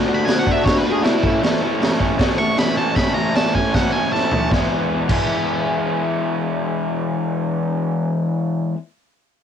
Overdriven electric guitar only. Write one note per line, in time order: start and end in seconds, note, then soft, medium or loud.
0.06 0.25 D3 medium
0.06 0.26 A3 medium
0.06 0.26 D4 medium
0.06 0.27 F#4 medium
0.26 0.43 D3 loud
0.26 0.45 A3 loud
0.26 0.45 D4 loud
0.26 0.46 F#4 loud
0.45 0.62 D3 medium
0.45 0.64 A3 medium
0.45 0.64 D4 medium
0.45 0.64 F#4 medium
0.63 0.82 D3 loud
0.63 0.84 A3 loud
0.63 0.85 D4 medium
0.63 0.85 F#4 loud
0.84 1.02 D3 medium
0.84 1.04 A3 medium
0.84 1.04 D4 loud
0.84 1.04 F#4 medium
1.03 1.21 D3 medium
1.03 1.22 A3 medium
1.03 1.22 D4 medium
1.03 1.22 F#4 loud
1.21 1.40 A2 medium
1.21 1.41 E3 medium
1.21 1.42 A3 medium
1.21 1.42 C#4 loud
1.21 1.43 E4 medium
1.41 1.60 A2 medium
1.41 1.61 E3 medium
1.41 1.61 A3 loud
1.41 1.62 C#4 medium
1.41 1.62 E4 loud
1.60 1.79 A2 medium
1.60 1.80 E3 medium
1.60 1.81 A3 medium
1.60 1.81 C#4 medium
1.60 1.82 E4 medium
1.79 1.98 A2 medium
1.79 1.99 E3 loud
1.79 1.99 A3 loud
1.79 2.00 C#4 loud
1.79 2.01 E4 medium
1.98 2.16 A2 medium
1.98 2.18 E3 medium
1.98 2.18 A3 medium
1.98 2.18 C#4 medium
1.98 2.20 E4 medium
2.17 2.36 A2 medium
2.17 2.37 E3 medium
2.17 2.37 A3 medium
2.17 2.38 C#4 medium
2.17 2.39 E4 loud
2.37 2.56 A2 medium
2.37 2.57 E3 medium
2.37 2.57 A3 medium
2.37 2.57 C#4 medium
2.37 2.59 E4 medium
2.57 2.74 A2 medium
2.57 2.76 E3 medium
2.57 2.75 A3 medium
2.57 2.76 C#4 loud
2.57 2.77 E4 medium
2.75 2.93 A2 medium
2.75 2.93 E3 medium
2.75 2.94 A3 medium
2.75 2.95 C#4 medium
2.75 2.95 E4 medium
2.94 3.12 A2 medium
2.94 3.14 E3 medium
2.94 3.14 A3 medium
2.94 3.14 C#4 loud
2.94 3.16 E4 loud
3.14 3.32 A2 medium
3.14 3.33 E3 medium
3.14 3.33 A3 medium
3.14 3.34 C#4 medium
3.14 3.35 E4 medium
3.33 3.51 A2 medium
3.33 3.52 E3 medium
3.33 3.53 A3 medium
3.33 3.53 C#4 loud
3.33 3.54 E4 medium
3.52 3.73 A2 medium
3.52 3.73 E3 medium
3.52 3.74 A3 medium
3.52 3.75 C#4 loud
3.52 3.75 E4 medium
3.74 3.92 A2 medium
3.74 3.93 E3 medium
3.74 3.93 A3 medium
3.74 3.95 C#4 loud
3.74 3.95 E4 loud
3.93 4.11 A2 medium
3.93 4.12 E3 medium
3.93 4.13 A3 medium
3.93 4.13 C#4 medium
3.93 4.14 E4 medium
4.12 4.32 A2 medium
4.12 4.32 E3 medium
4.12 4.33 A3 medium
4.12 4.33 C#4 medium
4.12 4.34 E4 medium
4.33 4.50 A2 medium
4.33 4.50 E3 medium
4.33 4.51 A3 medium
4.33 4.51 C#4 medium
4.33 4.51 E4 medium
4.51 5.08 E3 medium
4.51 5.10 G#3 medium
4.51 5.11 B3 medium
4.51 5.12 E4 loud
4.51 5.12 G#4 medium
5.09 8.74 E3 loud
5.09 8.75 G#3 medium
5.09 8.76 B3 medium
5.09 8.77 E4 loud
5.09 8.77 G#4 medium